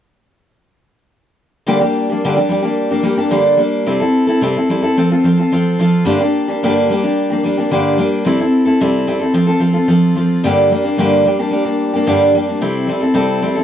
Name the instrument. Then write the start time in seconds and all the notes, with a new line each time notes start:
steel-string acoustic guitar
1.67 G2 D3 G3 A#3 D4 G4
1.80 G3 A#3 D4 G4
2.10 G3 A#3 D4 G4
2.24 G2 D3 G3 A#3 D4 G4
2.36 G3 A#3 D4 G4
2.49 G3 A#3 D4 G4
2.62 G3 A#3 D4 G4
2.91 G3 A#3 D4 G4
3.03 G3 A#3 D4 G4
3.17 G3 A#3 D4 G4
3.30 G2 D3 G3 A#3 D4 G4
3.57 G3 A#3 D4 G4
3.86 C3 G3 C4 E4 A4
4.00 C4 E4 A4
4.27 C4 E4 A4
4.41 C3 G3 C4 E4 A4
4.56 C4 E4 A4
4.69 G3 C4 E4 A4
4.82 C4 E4 A4
4.97 F3 C4 F4 A4
5.10 C4 F4 A4
5.24 F3 C4 F4 A4
5.37 C4 F4 A4
5.52 F3 C4 F4 A4
5.79 F3 C4 F4 A4
6.05 G2 D3 G3 A#3 D4 G4
6.20 G3 A#3 D4 G4
6.48 G3 A#3 D4 G4
6.63 G2 D3 G3 A#3 D4 G4
6.90 G3 A#3 D4 G4
7.03 G3 A#3 D4 G4
7.30 G3 A#3 D4 G4
7.43 G3 A#3 D4 G4
7.57 G3 A#3 D4 G4
7.71 G2 D3 G3 A#3 D4 G4
7.98 G3 A#3 D4 G4
8.25 C3 G3 C4 E4 A4
8.40 C4 E4 A4
8.65 C4 E4 A4
8.81 C3 G3 C4 E4 A4
9.07 G3 C4 E4 A4
9.19 C4 E4 A4
9.34 F3 C4 F4 A4
9.47 C4 F4 A4
9.59 F3 C4 F4 A4
9.73 C4 F4 A4
9.88 F3 C4 F4 A4
10.15 F3 C4 F4 A4
10.44 G2 D3 G3 A#3 D4 G4
10.71 G3 A#3 D4 G4
10.84 G3 A#3 D4 G4
10.97 G2 D3 G3 A#3 D4 G4
11.25 G3 A#3 D4 G4
11.39 G3 A#3 D4 G4
11.50 G3 A#3 D4 G4
11.65 G3 A#3 D4 G4
11.93 G3 A#3 D4 G4
12.07 G2 D3 G3 A#3 D4 G4
12.35 G3 A#3 D4 G4
12.47 G3 A#3 D4 G4
12.61 C3 G3 C4 E4 A4
12.87 G3 C4 E4 A4
13.01 C4 E4 A4
13.14 C3 G3 C4 E4 A4
13.42 G3 C4 E4 A4
13.55 C4 E4 A4